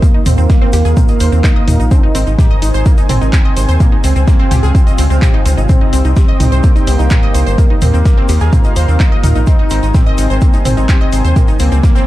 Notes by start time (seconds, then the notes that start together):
Already playing: C3 G3 A#3
0.02 A#3 D#4 F4 A#4 F5, kick, closed hi-hat, shaker
0.14 D#4 D#5
0.26 D#2 A#3 C4 C5, closed hi-hat, mid tom, open hi-hat, shaker
0.38 D#2 C4 C5, shaker
0.50 A#3 A#4, kick, snare, closed hi-hat, shaker
0.61 C4 C5, snare
0.73 D#2 G4 G5, snare, open hi-hat, shaker
0.85 D#2 G#4 G#5, snare, shaker
0.97 C4 C5, kick, closed hi-hat, mid tom, shaker
1.08 D#5 D#6, closed hi-hat, shaker
1.20 D#2 C5 C6, closed hi-hat, open hi-hat, shaker
1.32 D#2 C4 C5, shaker
1.44 D#4 D#5, kick, snare, clap, closed hi-hat, shaker
1.56 D#5 D#6
1.68 D#2 D#4 D#5, closed hi-hat, mid tom, open hi-hat, shaker
1.79 A#1 D#4 D#5, shaker
1.91 C4 D#4 C5 G#5, kick, closed hi-hat, shaker
2.03 D#4 D#5
2.15 G#1 C4 C5, closed hi-hat, open hi-hat, shaker
2.27 G#1 D#4 D#5, shaker
2.38 D#4 G4 G5, kick, snare, closed hi-hat, mid tom, shaker
2.51 D#5 D#6
2.62 G#1 D#4 D#5, closed hi-hat, open hi-hat, shaker
2.74 G#1 C5 C6, shaker
2.86 A#3 A#4, kick, closed hi-hat, shaker
2.98 D#4 D#5, closed hi-hat, shaker
3.09 G#1 C4 C5, closed hi-hat, mid tom, open hi-hat, shaker
3.21 G#1 D#4 D#5, shaker
3.33 G4 G5, kick, snare, clap, closed hi-hat, shaker
3.45 D#5 D#6
3.57 G#1 C5 C6, closed hi-hat, open hi-hat, shaker
3.68 D#2 C5 C6, closed hi-hat, shaker
3.80 A#3 F4 A#4 F5, kick, closed hi-hat, mid tom, shaker
3.92 D#4 D#5
4.04 C#2 C4 C5, closed hi-hat, open hi-hat, shaker
4.16 C#2 C4 C5, shaker
4.27 A#3 A#4, kick, snare, closed hi-hat, shaker
4.39 C4 C5, snare
4.51 C#2 G4 G5, snare, mid tom, open hi-hat, shaker
4.63 C#2 G#4 G#5, snare, shaker
4.75 C4 C5, kick, closed hi-hat, shaker
4.87 D#5 D#6, closed hi-hat, shaker
4.98 C#2 C4 C5, closed hi-hat, open hi-hat, shaker
5.10 C#2 C4 C5, shaker
5.22 G4 G5, kick, snare, clap, closed hi-hat, mid tom, shaker
5.34 D#4 D#5
5.46 C#2 C4 C5, closed hi-hat, open hi-hat, shaker
5.58 G#1 D#4 D#5, shaker
5.69 C4 D#4 G4 C5 G5, kick, closed hi-hat, mid tom, shaker
5.81 D#4 D#5
5.93 C2 C4 C5, closed hi-hat, open hi-hat, shaker
6.05 C2 D#4 D#5, shaker
6.16 C4 G4 G5, kick, snare, closed hi-hat, shaker
6.28 D#5 D#6
6.40 C2 D#4 D#5, closed hi-hat, mid tom, open hi-hat, shaker
6.52 C2 C5 C6, shaker
6.63 A#3 A#4, kick, closed hi-hat, shaker
6.76 D#4 D#5, closed hi-hat, shaker
6.87 C2 A#3 C4 C5, closed hi-hat, open hi-hat, shaker
6.99 C2 D#4 D#5, shaker
7.10 G4 G5, kick, snare, clap, closed hi-hat, mid tom, shaker
7.23 D#5 D#6
7.34 C2 C5 C6, closed hi-hat, open hi-hat, shaker
7.46 G1 C5 C6, closed hi-hat, shaker
7.58 A#3 F4 A#4 F5, kick, closed hi-hat, shaker
7.70 D#4 D#5
7.81 D#2 A#3 C4 C5, closed hi-hat, mid tom, open hi-hat, shaker
7.94 D#2 C4 C5, shaker
8.05 A#3 A#4, kick, snare, closed hi-hat, shaker
8.17 C4 C5, snare
8.29 D#2 G4 G5, snare, open hi-hat, shaker
8.40 D#2 G#4 G#5, snare, shaker
8.53 C4 C5, kick, closed hi-hat, mid tom, shaker
8.64 D#5 D#6, closed hi-hat, shaker
8.76 D#2 C5 C6, closed hi-hat, open hi-hat, shaker
8.88 D#2 C4 C5, shaker
9.00 D#4 D#5, kick, snare, clap, closed hi-hat, shaker
9.12 D#5 D#6
9.23 D#2 D#4 D#5, closed hi-hat, mid tom, open hi-hat, shaker
9.35 A#1 D#4 D#5, shaker
9.47 C4 D#4 C5 G#5, kick, closed hi-hat, shaker
9.59 D#4 D#5
9.70 G#1 C4 C5, closed hi-hat, open hi-hat, shaker
9.83 G#1 D#4 D#5, shaker
9.94 C4 G4 G5, kick, snare, closed hi-hat, mid tom, shaker
10.06 D#5 D#6
10.18 G#1 D#4 D#5, closed hi-hat, open hi-hat, shaker
10.30 G#1 C5 C6, shaker
10.41 A#3 A#4, kick, closed hi-hat, shaker
10.53 D#4 D#5, closed hi-hat, shaker
10.65 G#1 C4 C5, closed hi-hat, mid tom, open hi-hat, shaker
10.77 G#1 D#4 D#5, shaker
10.89 G4 G5, kick, snare, clap, closed hi-hat, shaker
11.01 D#5 D#6
11.12 G#1 C5 C6, closed hi-hat, open hi-hat, shaker
11.24 D#2 C5 C6, closed hi-hat, shaker
11.36 A#3 F4 A#4 C#5, kick, closed hi-hat, mid tom, shaker
11.48 D#4 D#5, shaker
11.59 C#2 A#3 C4 C5, closed hi-hat, open hi-hat, shaker
11.72 C#2 C4 C5, shaker
11.83 A#3 A#4, kick, snare, closed hi-hat, shaker
11.95 C4 C5, snare, shaker